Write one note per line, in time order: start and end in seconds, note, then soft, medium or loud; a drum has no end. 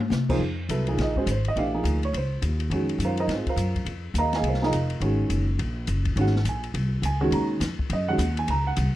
0.00 high tom medium
0.10 0.38 C3 medium
0.10 snare medium
0.10 hi-hat pedal medium
0.29 0.39 F3 medium
0.29 0.40 A#3 medium
0.29 0.40 D#4 medium
0.29 0.40 G#4 medium
0.29 0.40 C5 medium
0.29 kick medium
0.29 crash medium
0.39 0.68 F2 medium
0.69 0.97 C2 medium
0.69 0.85 F#3 medium
0.69 0.86 B3 medium
0.69 0.86 E4 medium
0.69 0.86 A4 medium
0.69 hi-hat pedal soft
0.69 ride medium
0.87 1.12 F3 medium
0.87 1.13 A#3 soft
0.87 1.13 D#4 soft
0.87 1.13 G#4 medium
0.87 ride soft
0.97 1.26 A#1 medium
0.97 snare soft
0.97 ride medium
1.02 1.17 D#5 medium
1.16 1.26 G#3 medium
1.16 1.26 C#4 medium
1.16 1.26 F#4 medium
1.16 1.28 G#4 medium
1.16 1.27 C5 medium
1.16 kick soft
1.26 1.55 G#1 medium
1.26 hi-hat pedal medium
1.26 ride medium
1.31 1.46 C5 medium
1.45 1.57 D#5 medium
1.45 ride soft
1.56 1.83 A#1 medium
1.56 1.72 E3 medium
1.56 1.72 A3 soft
1.56 1.72 D4 soft
1.56 1.72 G4 medium
1.56 2.00 F5 medium
1.56 ride soft
1.73 1.99 F3 medium
1.73 1.99 A#3 medium
1.73 1.99 D#4 medium
1.73 1.99 G#4 medium
1.84 2.12 D2 medium
1.84 hi-hat pedal soft
1.84 ride medium
2.03 2.14 C#5 medium
2.03 ride soft
2.13 2.41 C#2 medium
2.13 2.42 C5 medium
2.13 ride medium
2.42 2.69 D#2 medium
2.42 hi-hat pedal soft
2.42 ride medium
2.60 ride soft
2.70 2.98 F2 medium
2.70 3.14 D#3 medium
2.70 3.14 G#3 medium
2.70 3.15 C#4 medium
2.70 3.15 F#4 medium
2.70 ride medium
2.89 ride soft
2.98 3.27 F#2 medium
2.98 hi-hat pedal soft
2.98 ride medium
3.05 3.20 F4 medium
3.05 3.19 A#4 medium
3.05 3.18 C5 medium
3.05 3.19 F5 medium
3.17 3.30 D#4 medium
3.17 3.30 A#4 medium
3.17 3.29 C5 medium
3.17 3.30 D#5 medium
3.17 ride soft
3.27 3.44 G#2 medium
3.27 snare soft
3.27 ride medium
3.34 3.49 C4 soft
3.34 3.48 F4 soft
3.34 3.49 G#4 soft
3.34 3.48 C5 soft
3.46 3.85 F4 medium
3.46 3.85 A#4 medium
3.46 3.85 C5 medium
3.46 3.85 F5 medium
3.46 muted upright bass stroke soft
3.46 kick soft
3.46 ride soft
3.56 3.84 F#2 medium
3.56 hi-hat pedal medium
3.56 ride medium
3.75 kick soft
3.75 ride soft
3.85 4.14 F2 medium
3.85 ride medium
4.14 4.41 D#2 medium
4.14 hi-hat pedal soft
4.14 ride medium
4.18 4.34 A#4 medium
4.18 4.34 D#5 medium
4.18 4.34 F5 medium
4.18 4.34 A#5 medium
4.33 4.45 G#4 medium
4.33 4.45 D#5 medium
4.33 4.45 F5 medium
4.33 4.45 G#5 medium
4.33 snare soft
4.33 ride soft
4.42 4.71 C2 medium
4.42 ride medium
4.48 4.63 F4 soft
4.48 4.63 A#4 soft
4.48 4.64 C5 soft
4.48 4.63 F5 medium
4.54 snare soft
4.61 4.71 F3 medium
4.61 4.72 A#3 medium
4.61 4.72 D#4 medium
4.61 4.72 G#4 medium
4.61 5.00 A#4 medium
4.61 5.00 D#5 medium
4.61 5.00 F5 medium
4.61 5.00 A#5 medium
4.61 snare soft
4.72 5.00 F1 medium
4.72 hi-hat pedal medium
4.72 ride medium
4.90 ride soft
5.00 5.29 G#1 medium
5.00 5.44 D#3 medium
5.00 5.44 G#3 medium
5.00 5.45 C#4 medium
5.00 5.45 F#4 medium
5.00 ride medium
5.30 5.58 F#1 medium
5.30 hi-hat pedal soft
5.30 ride medium
5.59 5.87 A#1 medium
5.59 ride medium
5.87 6.15 F#1 medium
5.87 hi-hat pedal medium
5.87 ride medium
6.05 kick medium
6.05 ride soft
6.16 6.44 G#1 medium
6.16 6.33 D#3 medium
6.16 6.33 G#3 medium
6.16 6.33 C#4 medium
6.16 6.33 F#4 medium
6.16 ride medium
6.21 6.46 F#5 medium
6.26 snare soft
6.36 snare soft
6.45 6.73 A#1 medium
6.45 hi-hat pedal medium
6.45 ride medium
6.49 6.65 G#5 medium
6.64 ride soft
6.74 7.01 C2 medium
6.74 ride medium
7.02 7.30 C#2 medium
7.02 7.31 G#5 medium
7.02 hi-hat pedal medium
7.02 ride medium
7.20 7.58 D#3 medium
7.20 7.59 G#3 medium
7.20 7.59 C#4 medium
7.20 7.59 F#4 medium
7.31 7.59 D#2 medium
7.31 7.44 A#5 medium
7.31 ride medium
7.60 7.77 F2 medium
7.60 snare soft
7.60 hi-hat pedal soft
7.60 ride medium
7.79 muted upright bass stroke soft
7.79 kick medium
7.90 8.18 F#2 medium
7.90 8.09 D#5 medium
7.90 ride medium
8.08 8.18 D#3 medium
8.08 8.18 G#3 medium
8.08 8.18 C#4 medium
8.08 8.18 F#4 medium
8.08 8.35 F#5 medium
8.18 8.46 D#2 medium
8.18 hi-hat pedal medium
8.18 ride medium
8.37 8.48 G#5 medium
8.37 ride soft
8.48 8.75 C#2 medium
8.48 8.66 A#5 medium
8.48 ride medium
8.67 8.93 F#5 medium
8.76 8.93 C2 medium
8.76 hi-hat pedal soft
8.76 ride medium